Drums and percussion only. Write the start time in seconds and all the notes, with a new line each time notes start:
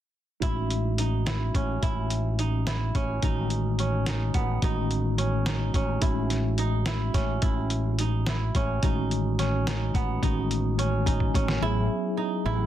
0.42 kick, closed hi-hat
0.70 closed hi-hat
0.98 closed hi-hat
1.27 snare, closed hi-hat
1.55 kick, closed hi-hat
1.83 kick, closed hi-hat
2.10 closed hi-hat
2.39 closed hi-hat
2.67 snare, closed hi-hat
2.95 kick, closed hi-hat
3.22 kick, closed hi-hat
3.50 closed hi-hat
3.79 closed hi-hat
4.06 snare, closed hi-hat
4.34 kick, closed hi-hat
4.62 kick, closed hi-hat
4.91 closed hi-hat
5.18 closed hi-hat
5.46 snare, closed hi-hat
5.74 kick, closed hi-hat
6.02 kick, closed hi-hat
6.30 snare, closed hi-hat
6.58 closed hi-hat
6.86 snare, closed hi-hat
7.14 kick, snare, closed hi-hat
7.42 kick, closed hi-hat
7.70 closed hi-hat
7.99 closed hi-hat
8.27 snare, closed hi-hat
8.55 kick, closed hi-hat
8.83 kick, closed hi-hat
9.11 closed hi-hat
9.39 snare, closed hi-hat
9.67 snare, closed hi-hat
9.95 kick, closed hi-hat
10.23 kick, closed hi-hat
10.51 closed hi-hat
10.79 closed hi-hat
11.06 kick, closed hi-hat
11.20 kick
11.34 kick, closed hi-hat
11.48 snare